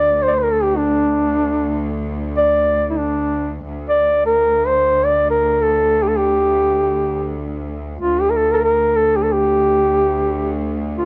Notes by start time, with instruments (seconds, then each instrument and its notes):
Already playing: cello section D2, duduk D5
0.23 duduk C5
0.28 duduk C5 D5
0.39 duduk A#4
0.52 duduk A4
0.63 duduk G4
0.77 duduk D4
2.37 duduk D5
2.90 duduk E4
2.98 duduk D4
3.65 cello section D2
3.89 duduk D5
4.26 duduk A#4
4.67 duduk C5
5.05 duduk D5
5.31 duduk A#4
5.62 duduk A4
6.03 duduk G4
6.08 duduk A4
6.17 duduk G4
7.99 duduk F4
8.05 cello section D2
8.21 duduk G4
8.30 duduk A#4
8.36 duduk A4
8.51 duduk A4 A#4
8.58 duduk A#4
8.64 duduk A#4
8.96 duduk A4
9.16 duduk G4
9.23 duduk A4
9.33 duduk G4
10.97 duduk F4